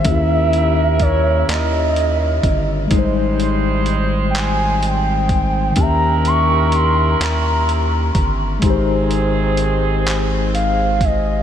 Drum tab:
HH |xxxxxx|xxxxxx|xxxxxx|xxxxxx|
CP |---x--|---x--|---x--|---x--|
BD |o-o--o|o----o|o----o|o----o|